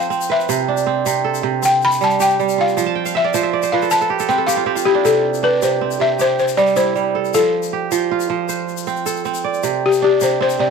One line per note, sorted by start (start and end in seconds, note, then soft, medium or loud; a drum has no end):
0.00 0.54 F3 medium
0.00 0.86 F4 medium
0.00 1.10 C5 medium
0.00 0.31 F5 medium
0.00 shaker soft
0.10 0.86 C4 medium
0.10 shaker soft
0.21 shaker medium
0.30 0.93 B4 medium
0.30 0.66 E5 medium
0.40 shaker soft
0.49 1.05 C3 medium
0.49 shaker medium
0.68 2.36 D4 medium
0.77 shaker soft
0.87 1.62 C4 medium
1.06 1.42 C3 medium
1.06 shaker medium
1.24 2.56 A4 medium
1.35 shaker soft
1.43 2.82 C3 medium
1.62 3.42 C4 medium
1.62 1.82 G5 loud
1.62 shaker medium
1.82 2.03 B5 loud
1.82 shaker soft
1.92 shaker medium
2.01 2.38 G3 medium
2.01 2.22 A5 loud
2.01 shaker soft
2.10 shaker soft
2.20 3.61 G4 medium
2.20 2.56 G5 loud
2.20 shaker medium
2.40 2.82 G3 medium
2.40 shaker soft
2.49 shaker soft
2.58 3.21 F4 medium
2.58 2.95 F5 medium
2.68 shaker soft
2.77 3.33 F3 medium
2.77 shaker medium
2.86 3.73 A5 medium
2.95 3.88 G5 medium
3.05 3.49 F5 medium
3.05 shaker soft
3.15 3.40 E5 medium
3.15 3.75 E5 medium
3.24 3.53 D5 medium
3.34 3.72 F3 medium
3.34 3.63 C5 medium
3.34 shaker medium
3.43 3.79 E5 medium
3.53 4.64 D5 medium
3.63 3.98 C5 medium
3.63 shaker soft
3.72 5.10 F3 medium
3.72 3.91 B4 medium
3.72 3.90 F5 medium
3.82 4.01 A4 medium
3.82 shaker soft
3.91 4.28 B4 medium
3.91 4.27 A5 loud
3.91 shaker medium
4.01 4.19 A4 medium
4.01 shaker soft
4.10 4.47 G4 medium
4.19 4.37 A4 medium
4.19 shaker medium
4.29 4.66 C4 medium
4.29 4.72 B4 medium
4.29 4.49 G5 medium
4.29 shaker soft
4.38 5.70 A4 medium
4.47 4.66 G4 medium
4.47 5.01 F5 medium
4.47 shaker medium
4.57 4.75 F4 medium
4.66 5.81 C4 medium
4.66 6.08 G4 medium
4.75 6.27 F4 medium
4.75 shaker medium
4.85 6.42 E4 medium
4.85 5.06 G4 medium
4.95 5.42 D4 medium
5.05 5.61 C3 medium
5.05 5.41 A4 medium
5.05 shaker medium
5.34 shaker soft
5.43 7.11 D4 medium
5.43 5.63 B4 medium
5.62 5.99 C3 medium
5.62 6.02 C5 medium
5.62 shaker medium
5.81 7.61 C4 medium
5.91 shaker soft
6.00 7.39 C3 medium
6.00 6.21 E5 medium
6.19 7.60 G4 medium
6.19 6.29 C5 loud
6.19 shaker medium
6.39 6.59 C5 medium
6.39 shaker soft
6.48 shaker soft
6.57 6.94 G3 medium
6.57 6.77 D5 medium
6.57 shaker soft
6.67 shaker soft
6.76 7.40 E4 medium
6.76 7.30 C5 loud
6.76 shaker medium
6.95 7.39 G3 medium
6.95 shaker soft
7.15 8.47 A4 medium
7.25 shaker soft
7.34 7.90 F3 medium
7.34 8.83 A4 medium
7.34 shaker medium
7.63 shaker soft
7.73 9.14 G4 medium
7.92 8.29 F3 medium
7.92 shaker medium
8.11 9.63 F4 medium
8.20 shaker soft
8.30 9.69 F3 medium
8.49 9.68 C5 medium
8.49 shaker medium
8.68 shaker soft
8.77 shaker medium
8.87 9.25 C4 medium
8.87 shaker soft
8.96 shaker soft
9.06 10.38 A4 medium
9.06 shaker medium
9.16 shaker soft
9.25 10.40 C4 medium
9.25 shaker soft
9.34 shaker medium
9.44 10.55 D5 medium
9.54 shaker soft
9.63 10.20 C3 medium
9.63 shaker medium
9.86 10.02 G4 medium
9.92 shaker soft
10.02 10.70 D4 medium
10.02 10.23 G4 medium
10.21 10.58 C3 medium
10.21 10.41 C5 medium
10.21 shaker medium
10.41 10.70 C4 medium
10.41 10.61 C5 medium
10.50 shaker soft
10.59 10.70 C3 medium
10.59 10.70 D5 medium